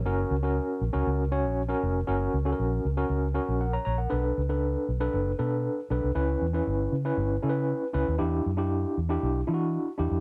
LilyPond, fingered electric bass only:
\new Staff \with { instrumentName = "Fingered electric bass" } { \clef bass \time 4/4 \key fis \phrygian \tempo 4 = 117 fis,,8 cis,8. r16 ais,,16 cis,16 cis,8. ais,,8. eis,,8 | fis,,8 cis,8 ais,,8 cis,8 cis,8. ais,,8. ais,,8 | b,,8 cis,4 b,,8 fis,,8 b,8. r16 b,,16 c,16 | cis,8 e,8 g,,8 cis8 g,,8 cis8. r16 cis,16 dis,16 |
e,8 fis,4 e,8 b,,8 e8. r16 e,16 eis,16 | }